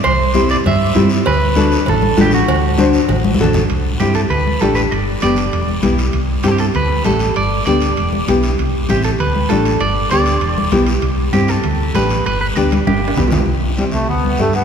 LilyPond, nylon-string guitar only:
\new Staff \with { instrumentName = "Nylon-string guitar" } { \time 4/4 \key c \lydian \tempo 4 = 196 r4 <c' e' g'>8 r4. <c' e' g'>8 r8 | r4 <d' fis' a'>8 r4. <d' fis' a'>8 r8 | r4 <d' fis' c''>8 r4. <d' fis' a'>8 r8 | r4 <c' e' g'>8 r4. <a d' g'>8 r8 |
r4 <b d' g'>8 r4. <b e' g'>8 r8 | r4 <c' e' g'>8 r4. <a d' g'>8 r8 | r4 <b d' g'>8 r4. <b e' g'>8 r8 | r4 <c' e' g'>8 r4. <a d' g'>8 r8 |
r4 <b d' g'>8 r4. <b e' g'>8 r8 | r4 <c' e' g'>8 r4. <a d' g'>8 r8 | r4 <b d' g'>8 r4. <b d' g'>8 r8 | r4 <c' e' g'>8 r4. <a d' g'>8 r8 | }